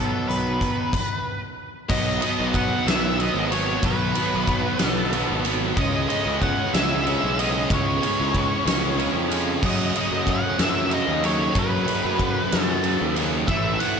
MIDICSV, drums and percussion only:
0, 0, Header, 1, 2, 480
1, 0, Start_track
1, 0, Tempo, 644468
1, 1414, Time_signature, 6, 3, 24, 8
1, 10426, End_track
2, 0, Start_track
2, 0, Title_t, "Drums"
2, 227, Note_on_c, 9, 42, 69
2, 301, Note_off_c, 9, 42, 0
2, 455, Note_on_c, 9, 36, 82
2, 460, Note_on_c, 9, 42, 62
2, 530, Note_off_c, 9, 36, 0
2, 535, Note_off_c, 9, 42, 0
2, 693, Note_on_c, 9, 36, 99
2, 698, Note_on_c, 9, 49, 96
2, 768, Note_off_c, 9, 36, 0
2, 772, Note_off_c, 9, 49, 0
2, 1411, Note_on_c, 9, 49, 114
2, 1412, Note_on_c, 9, 36, 115
2, 1486, Note_off_c, 9, 49, 0
2, 1487, Note_off_c, 9, 36, 0
2, 1653, Note_on_c, 9, 51, 80
2, 1728, Note_off_c, 9, 51, 0
2, 1893, Note_on_c, 9, 36, 83
2, 1897, Note_on_c, 9, 51, 82
2, 1968, Note_off_c, 9, 36, 0
2, 1971, Note_off_c, 9, 51, 0
2, 2144, Note_on_c, 9, 51, 106
2, 2149, Note_on_c, 9, 38, 114
2, 2219, Note_off_c, 9, 51, 0
2, 2223, Note_off_c, 9, 38, 0
2, 2381, Note_on_c, 9, 51, 83
2, 2456, Note_off_c, 9, 51, 0
2, 2619, Note_on_c, 9, 51, 77
2, 2694, Note_off_c, 9, 51, 0
2, 2851, Note_on_c, 9, 51, 108
2, 2852, Note_on_c, 9, 36, 115
2, 2926, Note_off_c, 9, 51, 0
2, 2927, Note_off_c, 9, 36, 0
2, 3092, Note_on_c, 9, 51, 89
2, 3166, Note_off_c, 9, 51, 0
2, 3330, Note_on_c, 9, 51, 81
2, 3333, Note_on_c, 9, 36, 83
2, 3405, Note_off_c, 9, 51, 0
2, 3408, Note_off_c, 9, 36, 0
2, 3568, Note_on_c, 9, 51, 101
2, 3572, Note_on_c, 9, 38, 113
2, 3642, Note_off_c, 9, 51, 0
2, 3647, Note_off_c, 9, 38, 0
2, 3818, Note_on_c, 9, 51, 88
2, 3892, Note_off_c, 9, 51, 0
2, 4056, Note_on_c, 9, 51, 82
2, 4130, Note_off_c, 9, 51, 0
2, 4297, Note_on_c, 9, 36, 107
2, 4297, Note_on_c, 9, 51, 107
2, 4371, Note_off_c, 9, 51, 0
2, 4372, Note_off_c, 9, 36, 0
2, 4542, Note_on_c, 9, 51, 76
2, 4617, Note_off_c, 9, 51, 0
2, 4778, Note_on_c, 9, 51, 75
2, 4779, Note_on_c, 9, 36, 86
2, 4852, Note_off_c, 9, 51, 0
2, 4853, Note_off_c, 9, 36, 0
2, 5022, Note_on_c, 9, 51, 101
2, 5027, Note_on_c, 9, 38, 122
2, 5097, Note_off_c, 9, 51, 0
2, 5101, Note_off_c, 9, 38, 0
2, 5263, Note_on_c, 9, 51, 81
2, 5337, Note_off_c, 9, 51, 0
2, 5503, Note_on_c, 9, 51, 77
2, 5578, Note_off_c, 9, 51, 0
2, 5737, Note_on_c, 9, 36, 115
2, 5740, Note_on_c, 9, 51, 106
2, 5812, Note_off_c, 9, 36, 0
2, 5815, Note_off_c, 9, 51, 0
2, 5981, Note_on_c, 9, 51, 88
2, 6055, Note_off_c, 9, 51, 0
2, 6215, Note_on_c, 9, 36, 77
2, 6216, Note_on_c, 9, 51, 80
2, 6290, Note_off_c, 9, 36, 0
2, 6290, Note_off_c, 9, 51, 0
2, 6459, Note_on_c, 9, 51, 114
2, 6464, Note_on_c, 9, 38, 116
2, 6534, Note_off_c, 9, 51, 0
2, 6538, Note_off_c, 9, 38, 0
2, 6698, Note_on_c, 9, 51, 83
2, 6773, Note_off_c, 9, 51, 0
2, 6937, Note_on_c, 9, 51, 80
2, 7011, Note_off_c, 9, 51, 0
2, 7171, Note_on_c, 9, 36, 108
2, 7172, Note_on_c, 9, 57, 104
2, 7246, Note_off_c, 9, 36, 0
2, 7246, Note_off_c, 9, 57, 0
2, 7414, Note_on_c, 9, 51, 83
2, 7489, Note_off_c, 9, 51, 0
2, 7648, Note_on_c, 9, 36, 78
2, 7651, Note_on_c, 9, 51, 85
2, 7723, Note_off_c, 9, 36, 0
2, 7725, Note_off_c, 9, 51, 0
2, 7888, Note_on_c, 9, 51, 110
2, 7892, Note_on_c, 9, 38, 115
2, 7962, Note_off_c, 9, 51, 0
2, 7966, Note_off_c, 9, 38, 0
2, 8127, Note_on_c, 9, 51, 84
2, 8201, Note_off_c, 9, 51, 0
2, 8368, Note_on_c, 9, 51, 73
2, 8443, Note_off_c, 9, 51, 0
2, 8605, Note_on_c, 9, 36, 116
2, 8609, Note_on_c, 9, 51, 102
2, 8680, Note_off_c, 9, 36, 0
2, 8684, Note_off_c, 9, 51, 0
2, 8846, Note_on_c, 9, 51, 79
2, 8921, Note_off_c, 9, 51, 0
2, 9083, Note_on_c, 9, 36, 86
2, 9083, Note_on_c, 9, 51, 76
2, 9157, Note_off_c, 9, 36, 0
2, 9158, Note_off_c, 9, 51, 0
2, 9327, Note_on_c, 9, 51, 101
2, 9331, Note_on_c, 9, 38, 119
2, 9401, Note_off_c, 9, 51, 0
2, 9406, Note_off_c, 9, 38, 0
2, 9560, Note_on_c, 9, 51, 81
2, 9634, Note_off_c, 9, 51, 0
2, 9802, Note_on_c, 9, 51, 80
2, 9877, Note_off_c, 9, 51, 0
2, 10038, Note_on_c, 9, 51, 104
2, 10040, Note_on_c, 9, 36, 113
2, 10113, Note_off_c, 9, 51, 0
2, 10114, Note_off_c, 9, 36, 0
2, 10279, Note_on_c, 9, 51, 83
2, 10353, Note_off_c, 9, 51, 0
2, 10426, End_track
0, 0, End_of_file